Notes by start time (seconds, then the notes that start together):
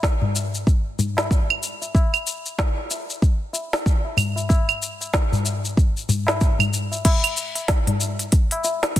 0.03 kick, snare, shaker
0.22 tabla ge
0.36 tabla tin, shaker
0.55 shaker
0.67 kick, shaker
0.99 tabla ge, shaker
1.17 snare, tabla na, shaker
1.31 kick, shaker
1.50 claves
1.63 shaker
1.82 tabla tin, shaker
1.95 kick, tabla na, shaker
2.14 claves, shaker
2.27 shaker
2.46 shaker
2.59 kick, snare, shaker
2.91 tabla tin, shaker
3.10 shaker
3.22 kick, shaker
3.53 tabla tin, shaker
3.73 snare, shaker
3.86 kick, shaker
4.05 tabla tin
4.17 tabla ge, claves, shaker
4.36 tabla tin, shaker
4.49 kick, tabla na, shaker
4.68 tabla tin, claves, shaker
4.82 shaker
5.01 tabla na, shaker
5.14 kick, snare, shaker
5.32 tabla ge, shaker
5.45 tabla tin, shaker
5.65 shaker
5.77 kick, shaker
5.97 shaker
6.09 tabla ge, shaker
6.27 snare, tabla na, shaker
6.41 kick, shaker
6.59 tabla ge, claves, shaker
6.73 shaker
6.92 tabla tin, shaker
7.05 kick, open hi-hat, crash, tabla na, shaker
7.24 open hi-hat, claves, shaker
7.37 shaker
7.55 open hi-hat, tabla na, shaker
7.68 kick, snare, open hi-hat, shaker
7.87 open hi-hat, tabla ge
8.00 tabla tin, shaker
8.19 open hi-hat, shaker
8.32 kick, open hi-hat, shaker
8.51 open hi-hat, tabla na
8.64 tabla tin, shaker
8.83 snare, open hi-hat, shaker
8.96 kick, open hi-hat, shaker